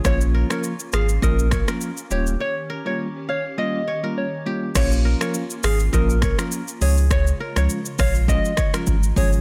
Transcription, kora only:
X:1
M:4/4
L:1/16
Q:"Swing 16ths" 1/4=102
K:Bbdor
V:1 name="Kora"
d z B d z2 f z e z d B z2 G z | d z B d z2 f z e z d B z2 G z | d z B d z2 f z e z d B z2 A z | d z B d z2 f z e z d B z2 A z |]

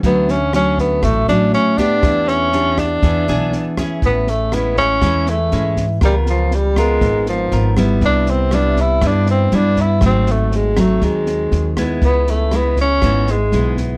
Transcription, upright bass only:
X:1
M:4/4
L:1/8
Q:1/4=120
K:Edor
V:1 name="Upright bass" clef=bass
D,,4 A,,, A,,, z2 | E,,4 E,, B,,, z2 | [K:C#phr] A,,,4 E,,2 G,,2 | C,,4 G,,,2 G,,,2 |
=C,,4 =G,,2 G,,2 | G,,,4 ^D,,2 D,,2 | C,,4 G,,,2 B,,,2 |]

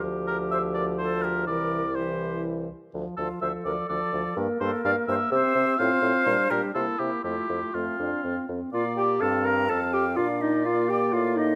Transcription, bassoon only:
X:1
M:3/4
L:1/8
Q:1/4=125
K:F
V:1 name="Bassoon" clef=bass
D,,6 | C,,4- C,, z | D,, D,, D,, D,, D,, D,, | G,, G,, G,, G,, C, C, |
A,, A,, B,, B,, C, C, | F,, F,, F,, F,, F,, F,, | [K:Bb] B,,2 G,,2 F,,2 | B,,4 A,,2 |]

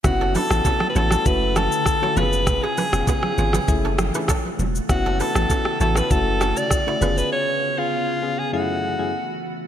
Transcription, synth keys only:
X:1
M:4/4
L:1/16
Q:1/4=99
K:F#m
V:1 name="Synth keys"
[B,CEF]3 [B,CEF]3 [B,CEF]2 [A,CEF]4- [A,CEF] [A,CEF] [B,C^EG]2- | [B,C^EG]3 [B,CEG]3 [B,CEG]2 [A,C=EG]3 [A,CEG] z4 | [B,CEF]3 [B,CEF]3 [B,CEF]2 [A,CEF]4- [A,CEF] [A,CEF] [B,C^EG]2- | [B,C^EG]3 [B,CEG]3 [B,CEG]2 [F,,A,C=EG]3 [F,,A,CEG] z4 |]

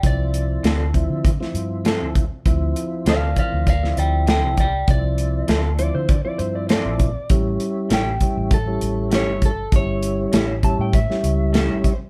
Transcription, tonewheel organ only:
X:1
M:4/4
L:1/16
Q:1/4=99
K:Dm
V:1 name="Tonewheel organ"
[F,CE]4- [F,CE] z [F,CE]2 z [F,CE]6 z | [F,CE]4- [F,CE] z [E,F,C]2 z [F,CE]6 z | [F,CE]4- [F,CE] z [F,CE]2 z [F,CE]6 z | [G,^CE]4- [G,CE] z [G,CE]2 z [G,CE]6 z |
[G,^CE]4- [G,CE] z [G,CE]2 z [G,CE]6 z |]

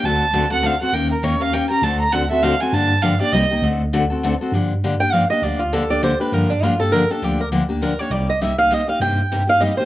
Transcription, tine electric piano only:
X:1
M:3/4
L:1/8
Q:"Swing" 1/4=201
K:Gm
V:1 name="Tine electric piano" clef=bass
D,,6 | E,,6 | D,,6 | G,,4 C,,2 |
D,,6 | G,,6 | D,,6 | G,,6 |
D,,6 | C,,6 | G,,6 |]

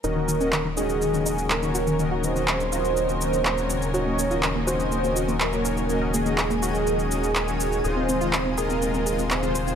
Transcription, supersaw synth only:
X:1
M:4/4
L:1/16
Q:1/4=123
K:Ebdor
V:1 name="Supersaw synth"
[E,DGe]3 [E,DGe] z2 [E,DGe]4 [E,DGe] z2 [E,DGd]3 | [E,DGe]3 [E,DGe] z2 [E,DGe]4 [E,DGe] z2 [E,DGd]3 | [E,DGe]3 [E,DGe] z2 [E,DGe]4 [E,DGe] z2 [E,DGd]3 | [E,DGe]3 [E,DGe] z2 [E,DGe]4 [E,DGe] z2 [E,DGd]3 |
[E,A,Fe]3 [E,A,Fe] z2 [E,A,Fe]4 [E,A,Fe] z2 [E,A,Fc]3 |]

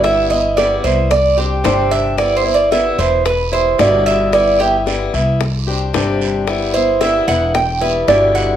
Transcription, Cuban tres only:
X:1
M:4/4
L:1/8
Q:1/4=112
K:G
V:1 name="Cuban tres"
e _e d c d G c =e | (3d c d e c B c d e | d G z6 | z c e f g B d f |]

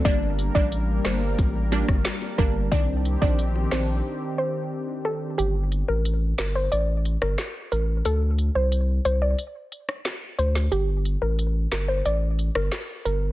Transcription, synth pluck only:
X:1
M:4/4
L:1/16
Q:1/4=90
K:Gm
V:1 name="Synth pluck"
d2 z d z2 c z6 z B z | d z2 d z2 c z3 c z3 A z | G z2 B z2 B c d z2 B z2 B z | A z2 c z2 c d z6 c z |
G z2 B z2 B c d z2 B z2 B z |]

